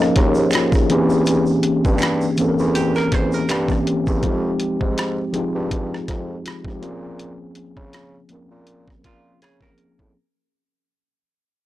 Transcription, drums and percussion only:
0.02 cross-stick soft
0.16 kick medium
0.16 cross-stick soft
0.16 closed hi-hat medium
0.35 shaker soft
0.51 finger snap medium
0.51 closed hi-hat medium
0.51 shaker medium
0.55 cross-stick medium
0.72 kick medium
0.72 cross-stick soft
0.72 shaker soft
0.90 closed hi-hat medium
1.10 shaker soft
1.26 closed hi-hat medium
1.26 shaker medium
1.46 shaker soft
1.63 closed hi-hat medium
1.85 kick medium
1.85 shaker soft
1.98 finger snap medium
1.98 closed hi-hat medium
1.98 shaker medium
2.03 cross-stick loud
2.21 shaker soft
2.37 closed hi-hat soft
2.37 shaker soft
2.59 shaker soft
2.75 closed hi-hat medium
2.75 shaker medium
2.95 cross-stick soft
2.95 shaker soft
3.12 kick medium
3.12 cross-stick soft
3.12 closed hi-hat medium
3.32 shaker soft
3.49 finger snap medium
3.49 cross-stick medium
3.49 closed hi-hat medium
3.49 shaker medium
3.68 kick medium
3.68 cross-stick soft
3.68 shaker soft
3.87 closed hi-hat medium
4.07 kick medium
4.07 shaker soft
4.23 kick loud
4.23 closed hi-hat medium
4.60 closed hi-hat medium
4.81 kick medium
4.98 cross-stick loud
4.98 closed hi-hat medium
5.34 closed hi-hat soft
5.71 kick medium
5.71 closed hi-hat medium
5.94 cross-stick soft
6.08 kick medium
6.08 cross-stick soft
6.08 closed hi-hat medium
6.46 cross-stick medium
6.46 closed hi-hat medium
6.65 kick medium
6.65 cross-stick soft
6.83 closed hi-hat medium
7.19 closed hi-hat medium
7.55 closed hi-hat medium
7.77 kick medium
7.93 cross-stick loud
7.93 closed hi-hat medium
8.29 closed hi-hat soft
8.67 closed hi-hat medium
8.88 kick medium
8.88 cross-stick soft
9.04 kick medium
9.04 cross-stick soft
9.04 closed hi-hat medium
9.42 cross-stick medium
9.42 closed hi-hat medium
9.61 kick medium
9.61 cross-stick soft
9.78 closed hi-hat soft
9.99 kick medium

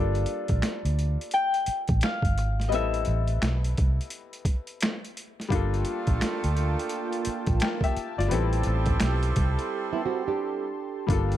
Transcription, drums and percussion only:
0.15 closed hi-hat soft
0.26 closed hi-hat medium
0.48 kick medium
0.48 closed hi-hat soft
0.62 finger snap medium
0.62 snare medium
0.62 closed hi-hat medium
0.85 closed hi-hat soft
0.99 closed hi-hat medium
1.21 closed hi-hat soft
1.31 closed hi-hat medium
1.54 closed hi-hat soft
1.66 closed hi-hat medium
1.88 kick loud
1.88 closed hi-hat soft
2.01 finger snap medium
2.01 snare loud
2.01 closed hi-hat medium
2.22 kick medium
2.22 closed hi-hat soft
2.38 closed hi-hat medium
2.60 snare soft
2.60 closed hi-hat soft
2.72 closed hi-hat medium
2.94 closed hi-hat soft
3.05 closed hi-hat medium
3.28 closed hi-hat soft
3.42 finger snap medium
3.42 snare loud
3.42 closed hi-hat medium
3.64 closed hi-hat soft
3.77 kick medium
3.77 closed hi-hat medium
4.01 closed hi-hat soft
4.10 closed hi-hat medium
4.33 closed hi-hat medium
4.45 kick medium
4.45 closed hi-hat medium
4.67 closed hi-hat soft
4.81 finger snap medium
4.81 snare loud
4.81 closed hi-hat medium
5.05 closed hi-hat soft
5.17 closed hi-hat medium
5.40 snare soft
5.40 closed hi-hat soft
5.50 kick loud
5.50 closed hi-hat medium
5.74 closed hi-hat soft
5.85 closed hi-hat medium
6.07 kick medium
6.07 closed hi-hat soft
6.21 finger snap medium
6.21 snare loud
6.21 closed hi-hat medium
6.44 closed hi-hat medium
6.57 closed hi-hat medium
6.79 closed hi-hat soft
6.89 closed hi-hat medium
7.13 closed hi-hat soft
7.25 closed hi-hat medium
7.46 kick medium
7.46 closed hi-hat soft
7.60 finger snap medium
7.60 snare loud
7.60 closed hi-hat medium
7.81 kick medium
7.81 closed hi-hat soft
7.97 closed hi-hat medium
8.19 snare soft
8.19 closed hi-hat soft
8.31 closed hi-hat medium
8.53 closed hi-hat soft
8.63 closed hi-hat medium
8.86 kick medium
8.86 closed hi-hat soft
9.00 finger snap medium
9.00 snare loud
9.00 closed hi-hat medium
9.23 closed hi-hat soft
9.36 kick medium
9.36 closed hi-hat medium
9.59 closed hi-hat soft
11.09 kick loud
11.09 closed hi-hat medium
11.32 closed hi-hat soft

